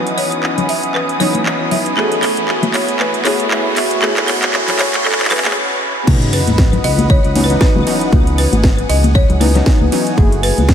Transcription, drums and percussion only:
0.07 closed hi-hat
0.18 open hi-hat
0.32 closed hi-hat
0.43 clap
0.58 closed hi-hat, low conga
0.69 open hi-hat
0.83 closed hi-hat
0.95 clap
1.09 closed hi-hat
1.20 open hi-hat, low conga
1.34 closed hi-hat, high conga
1.46 clap
1.71 open hi-hat, low conga
1.86 closed hi-hat
1.97 clap
2.12 closed hi-hat
2.23 clap, open hi-hat
2.37 closed hi-hat
2.48 clap
2.62 closed hi-hat, high conga, low conga
2.74 clap, open hi-hat
2.88 closed hi-hat
3.00 clap
3.14 closed hi-hat
3.25 clap, open hi-hat
3.40 closed hi-hat
3.51 clap
3.77 clap, open hi-hat
3.91 closed hi-hat
4.02 clap
4.17 clap, closed hi-hat
4.28 clap, open hi-hat
4.42 clap, closed hi-hat
4.54 clap
4.68 clap, open hi-hat, low conga
4.79 clap, open hi-hat
4.94 clap, closed hi-hat
5.05 clap
5.12 clap
5.19 clap, closed hi-hat
5.25 clap
5.30 clap, open hi-hat, low conga
5.38 clap
5.45 clap, closed hi-hat, high conga
5.50 clap
6.07 kick, crash, ride, high conga
6.22 closed hi-hat
6.33 open hi-hat, ride
6.47 closed hi-hat, high conga
6.58 kick, snare, ride
6.73 closed hi-hat, low conga
6.84 open hi-hat, ride
6.98 closed hi-hat, high conga
7.10 kick, ride
7.24 closed hi-hat
7.36 open hi-hat, ride, high conga
7.50 closed hi-hat
7.61 kick, snare, ride
7.75 high conga, low conga
7.87 open hi-hat, ride
8.01 closed hi-hat
8.12 kick, ride, high conga
8.27 closed hi-hat
8.38 open hi-hat, ride
8.53 closed hi-hat, high conga
8.64 kick, snare, ride
8.78 closed hi-hat
8.90 open hi-hat, ride
9.04 closed hi-hat, high conga
9.15 kick, ride
9.30 closed hi-hat, low conga
9.40 open hi-hat, ride, high conga
9.55 snare, closed hi-hat, low conga
9.66 kick, snare, ride
9.81 high conga
9.92 open hi-hat, ride
10.07 closed hi-hat
10.18 kick, ride, high conga
10.32 closed hi-hat
10.43 open hi-hat, ride
10.58 closed hi-hat, high conga
10.69 kick, snare, ride

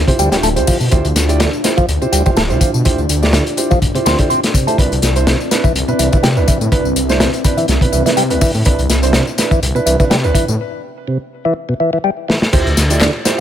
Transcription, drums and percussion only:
0.08 kick, closed hi-hat, tambourine
0.19 closed hi-hat, tambourine
0.32 snare, closed hi-hat, tambourine
0.43 closed hi-hat, tambourine
0.56 closed hi-hat, tambourine
0.67 kick, open hi-hat, tambourine
0.81 tambourine
0.91 kick, closed hi-hat, tambourine
1.05 closed hi-hat, tambourine
1.16 snare, closed hi-hat, tambourine
1.29 closed hi-hat, tambourine
1.40 snare, closed hi-hat, tambourine
1.53 tambourine
1.64 snare, closed hi-hat, tambourine
1.78 kick, tambourine
1.89 closed hi-hat, tambourine
2.02 tambourine
2.13 closed hi-hat, tambourine
2.26 kick, tambourine
2.37 snare, closed hi-hat, tambourine
2.50 tambourine
2.61 kick, closed hi-hat, tambourine
2.74 tambourine
2.85 kick, closed hi-hat, tambourine
2.98 tambourine
3.09 closed hi-hat, tambourine
3.23 snare, tambourine
3.33 snare, closed hi-hat, tambourine
3.47 closed hi-hat, tambourine
3.57 closed hi-hat, tambourine
3.71 kick, tambourine
3.82 kick, closed hi-hat, tambourine
3.95 closed hi-hat, tambourine
4.06 snare, closed hi-hat, tambourine
4.18 kick, closed hi-hat, tambourine
4.30 closed hi-hat, tambourine
4.43 snare, closed hi-hat, tambourine
4.54 kick, closed hi-hat, tambourine
4.68 closed hi-hat, tambourine
4.78 kick, closed hi-hat, tambourine
4.92 closed hi-hat, tambourine
5.02 snare, closed hi-hat, tambourine
5.16 closed hi-hat, tambourine
5.27 snare, closed hi-hat, tambourine
5.40 tambourine
5.51 snare, closed hi-hat, tambourine
5.64 kick, tambourine
5.75 closed hi-hat, tambourine
5.88 tambourine
5.99 closed hi-hat, tambourine
6.13 kick, tambourine
6.23 snare, closed hi-hat, tambourine
6.37 tambourine
6.48 kick, closed hi-hat, tambourine
6.61 tambourine
6.72 kick, closed hi-hat, tambourine
6.85 tambourine
6.96 closed hi-hat, tambourine
7.09 snare, tambourine
7.20 snare, closed hi-hat, tambourine
7.33 closed hi-hat, tambourine
7.44 kick, closed hi-hat, tambourine
7.58 closed hi-hat, tambourine
7.68 snare, closed hi-hat, tambourine
7.81 kick, closed hi-hat, tambourine
7.93 closed hi-hat, tambourine
8.06 snare, closed hi-hat, tambourine
8.17 closed hi-hat, tambourine
8.30 closed hi-hat, tambourine
8.41 kick, open hi-hat, tambourine
8.54 tambourine
8.65 kick, closed hi-hat, tambourine
8.79 closed hi-hat, tambourine
8.90 snare, closed hi-hat, tambourine
9.03 closed hi-hat, tambourine
9.13 snare, closed hi-hat, tambourine
9.27 tambourine
9.38 snare, closed hi-hat, tambourine
9.51 kick, tambourine
9.63 closed hi-hat, tambourine
9.76 tambourine
9.87 closed hi-hat, tambourine
10.00 kick, tambourine
10.11 snare, closed hi-hat, tambourine
10.24 tambourine
10.35 kick, closed hi-hat, tambourine
10.48 tambourine
12.30 snare
12.42 snare
12.53 kick, closed hi-hat, crash, tambourine
12.67 closed hi-hat
12.77 snare, closed hi-hat, tambourine
12.90 closed hi-hat, tambourine
13.01 snare, clap, closed hi-hat, tambourine
13.25 snare, closed hi-hat, tambourine

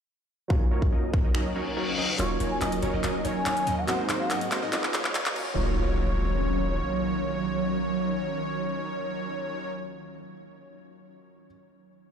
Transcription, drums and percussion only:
0.50 kick
0.82 kick
1.14 kick
1.35 finger snap
2.19 clap, closed hi-hat
2.40 closed hi-hat
2.61 clap, closed hi-hat
2.72 closed hi-hat
2.82 closed hi-hat
3.04 clap, closed hi-hat
3.25 closed hi-hat
3.46 clap, closed hi-hat
3.57 closed hi-hat
3.67 closed hi-hat
3.88 clap, closed hi-hat
4.09 clap, closed hi-hat
4.30 clap, closed hi-hat
4.41 closed hi-hat
4.52 clap, closed hi-hat
4.73 clap, closed hi-hat
4.84 clap
4.94 clap, closed hi-hat
5.05 clap
5.15 clap, closed hi-hat
5.26 clap, closed hi-hat
5.36 crash

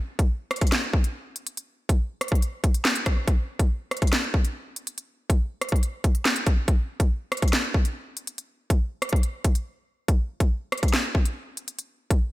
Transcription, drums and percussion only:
0.19 kick, closed hi-hat
0.51 cross-stick, closed hi-hat
0.56 closed hi-hat
0.61 kick, closed hi-hat
0.67 closed hi-hat
0.72 snare, clap
0.93 kick
1.04 closed hi-hat
1.36 closed hi-hat
1.47 closed hi-hat
1.57 closed hi-hat
1.89 kick, closed hi-hat
2.21 cross-stick, closed hi-hat
2.28 kick, closed hi-hat
2.35 closed hi-hat
2.42 closed hi-hat
2.64 kick, closed hi-hat
2.74 closed hi-hat
2.85 snare, clap
2.95 closed hi-hat
3.06 kick, cross-stick, closed hi-hat
3.28 kick, closed hi-hat
3.59 kick, closed hi-hat
3.91 cross-stick, closed hi-hat
3.97 closed hi-hat
4.02 kick, closed hi-hat
4.07 closed hi-hat
4.13 snare, clap
4.34 kick
4.45 closed hi-hat
4.76 closed hi-hat
4.87 closed hi-hat
4.98 closed hi-hat
5.30 kick, closed hi-hat
5.61 cross-stick, closed hi-hat
5.69 kick, closed hi-hat
5.76 closed hi-hat
5.83 closed hi-hat
6.04 kick, closed hi-hat
6.15 closed hi-hat
6.25 snare, clap
6.36 closed hi-hat
6.47 kick, closed hi-hat
6.68 kick, closed hi-hat
7.00 kick, closed hi-hat
7.32 cross-stick, closed hi-hat
7.37 closed hi-hat
7.42 kick, closed hi-hat
7.48 closed hi-hat
7.53 snare, clap
7.74 kick
7.85 closed hi-hat
8.17 closed hi-hat
8.27 closed hi-hat
8.38 closed hi-hat
8.70 kick, closed hi-hat
9.02 cross-stick, closed hi-hat
9.09 kick, closed hi-hat
9.16 closed hi-hat
9.23 closed hi-hat
9.45 kick, closed hi-hat
9.55 closed hi-hat
10.08 kick, closed hi-hat
10.40 kick, closed hi-hat
10.72 cross-stick, closed hi-hat
10.78 closed hi-hat
10.83 kick, closed hi-hat
10.88 closed hi-hat
10.93 snare, clap
11.15 kick
11.25 closed hi-hat
11.57 closed hi-hat
11.68 closed hi-hat
11.79 closed hi-hat
12.10 kick, closed hi-hat

